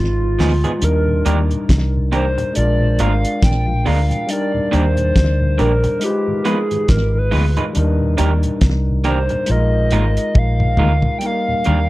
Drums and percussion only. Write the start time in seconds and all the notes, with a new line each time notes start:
0.39 snare, open hi-hat
0.64 closed hi-hat
0.82 closed hi-hat
1.26 closed hi-hat
1.51 closed hi-hat
1.69 kick, snare, closed hi-hat
2.13 closed hi-hat
2.38 closed hi-hat
2.55 closed hi-hat
2.99 closed hi-hat
3.25 closed hi-hat
3.42 kick, snare, closed hi-hat
3.86 open hi-hat
4.11 closed hi-hat
4.29 closed hi-hat
4.73 closed hi-hat
4.97 closed hi-hat
5.16 kick, snare, closed hi-hat
5.59 closed hi-hat
5.84 closed hi-hat
6.01 closed hi-hat
6.45 closed hi-hat
6.71 closed hi-hat
6.88 kick, snare, closed hi-hat
7.32 open hi-hat
7.57 closed hi-hat
7.75 closed hi-hat
8.18 closed hi-hat
8.43 closed hi-hat
8.61 kick, snare, closed hi-hat
9.04 closed hi-hat
9.29 closed hi-hat
9.46 closed hi-hat
9.91 closed hi-hat
10.17 closed hi-hat
10.35 kick, high tom
10.60 mid tom
10.77 mid tom
11.02 floor tom
11.21 closed hi-hat
11.64 closed hi-hat